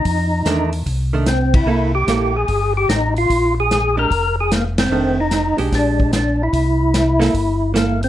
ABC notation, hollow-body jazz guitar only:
X:1
M:4/4
L:1/8
Q:"Swing" 1/4=148
K:Cdor
V:1 name="Hollow-body jazz guitar"
z2 [E,A,D] z2 [E,A,D] z2 | [B,=EA] z [B,EA] z4 z | z3 [_A,DG] z4 | [E,A,D] z2 [_A,DG]3 z2 |
z3 [B,=EA] z2 [B,EA] z |]